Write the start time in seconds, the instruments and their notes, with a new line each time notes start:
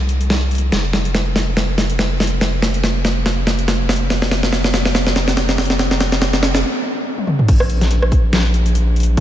Already playing: sub bass C2
0.09 closed hi-hat
0.21 closed hi-hat
0.30 snare, closed hi-hat
0.51 closed hi-hat
0.55 closed hi-hat
0.58 closed hi-hat
0.72 sub bass F1, snare, closed hi-hat
0.93 snare, closed hi-hat
1.05 closed hi-hat
1.15 snare, closed hi-hat
1.36 snare, closed hi-hat
1.57 snare, closed hi-hat
1.78 snare, closed hi-hat
1.90 closed hi-hat
1.99 snare, closed hi-hat
2.20 snare, closed hi-hat
2.24 closed hi-hat
2.27 closed hi-hat
2.41 snare, closed hi-hat
2.62 snare, closed hi-hat
2.74 closed hi-hat
2.84 snare, closed hi-hat
3.05 snare, closed hi-hat
3.26 snare, closed hi-hat
3.47 snare, closed hi-hat
3.59 closed hi-hat
3.68 snare, closed hi-hat
3.89 snare, closed hi-hat
3.93 closed hi-hat
3.96 closed hi-hat
4.10 snare, closed hi-hat
4.22 snare
4.31 snare, closed hi-hat
4.43 snare, closed hi-hat
4.53 snare, closed hi-hat
4.64 snare
4.74 snare, closed hi-hat
4.85 snare
4.95 snare, closed hi-hat
5.07 snare
5.16 snare, closed hi-hat
5.28 snare, closed hi-hat
5.37 snare, closed hi-hat
5.49 snare
5.58 snare, closed hi-hat
5.62 closed hi-hat
5.65 closed hi-hat
5.70 snare
5.79 snare, closed hi-hat
5.91 snare
6.01 snare, closed hi-hat
6.12 snare, closed hi-hat
6.22 snare, closed hi-hat
6.33 snare
6.43 snare, closed hi-hat
6.55 snare
7.18 high tom
7.27 mid tom
7.39 mid tom
7.48 sub bass A#1, kick, closed hi-hat, crash
7.60 cross-stick
7.70 closed hi-hat
7.81 snare, closed hi-hat
7.91 closed hi-hat
8.02 cross-stick
8.12 kick, closed hi-hat
8.33 snare, closed hi-hat
8.54 closed hi-hat
8.66 closed hi-hat
8.75 closed hi-hat
8.96 closed hi-hat
9.00 closed hi-hat
9.03 closed hi-hat